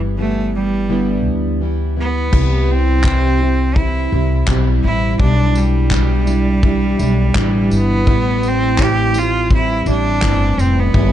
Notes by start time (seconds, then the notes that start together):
Already playing: G1 E3 G3 B3 E4
0.18 E3 G3 A3 B3 E4
0.55 G3
0.89 G2 D3 E3 G3 B3 E4
1.26 D2
1.61 E3 G3 B3 E4
1.96 E3 G3 B3 E4
2.01 B3
2.31 C2 C3 E3 G3 E4, kick, crash
2.71 C4
3.04 C3 E3 G3 C4 E4, kick, clap
3.41 G3 C4 E4
3.76 E3 G3 C4 E4, kick
4.12 C2 G3 C4 E4
4.47 B1 E3 G3 C4 E4, kick, clap
4.84 A1 E4
5.20 B1 B2 E3 G3 D4 E4, kick
5.55 G3, tambourine
5.91 B2 E3 G3 D4 E4, kick, clap
6.27 G3 D4 E4, tambourine
6.63 E3 G3 D4 E4, kick
6.99 B1 G3 D4 E4, tambourine
7.35 A1 B2 E3 G3 D4 E4, kick, clap
7.70 G1, tambourine
7.76 B3
8.07 A1 A2 E3 G3 E4, kick
8.43 tambourine
8.48 C4
8.78 A2 E3 G3 C4 E4, kick, clap, tambourine
8.83 G4
9.14 G3 C4, tambourine
9.18 F4
9.51 E3 G3 C4 E4, kick
9.55 E4
9.86 A1 G3 C4 D4 E4, tambourine
10.22 G1 A2 E3 G3 C4 E4, kick, clap, tambourine
10.58 F1 C4, tambourine
10.79 B3
10.94 G1 G2 D3 E3 G3 B3 E4, kick